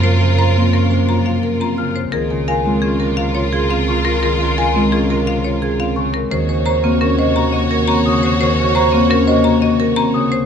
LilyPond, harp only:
\new Staff \with { instrumentName = "Harp" } { \clef bass \time 6/4 \key des \major \tempo 4 = 172 <c des f bes>8 des4 bes4 c2~ c8 des4 | ees8 des4 aes4 c2~ c8 des4 | ees8 des4 aes4 c2~ c8 des4 | ees8 des4 bes4 c2~ c8 des4 |
ees8 des4 bes4 c2~ c8 des4 | }